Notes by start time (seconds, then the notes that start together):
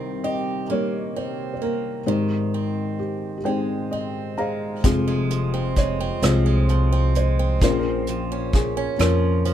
Already playing: C2 C3 D#3 G3 C4 D#4 A#4
0.24 G4 D#5
0.70 G3 A#3 D#4 A#4 C#5
1.16 C4 C5
1.54 C5
1.62 A#3 A#4
2.06 G#1 G#2 D#3 G#3 D#4 G4 C5
2.54 C4
2.99 G4
3.38 G4
3.44 G#3 C4 D#4 G#4 C5 G5
3.91 C4 D#5
4.38 G#3 G#4 C5 F5 A#5
4.84 F1 F2 C3 F3 G#3 F4 G#4, kick, closed hi-hat
5.08 G#3
5.30 F3, closed hi-hat
5.54 C4
5.76 G#3 C#5, kick, closed hi-hat
6.00 C4
6.22 C2 F3 G#3 C4 F4 G#4 C5, cross-stick, closed hi-hat
6.46 G#3
6.69 F3, closed hi-hat
6.92 C4
7.15 G#3 C5, closed hi-hat
7.39 C4
7.61 A#1 A#2 F3 A#3 C#4 F4 A#4 C5, kick, closed hi-hat
7.70 G#4
7.79 C#4 F4 A#4
8.07 F3, closed hi-hat
8.32 C#4
8.53 G#4, kick, closed hi-hat
8.77 C#4
8.98 F2 F3 A#3 C#4 F4 A#4 C#5, cross-stick, closed hi-hat
9.03 C#4 F4
9.45 F3, closed hi-hat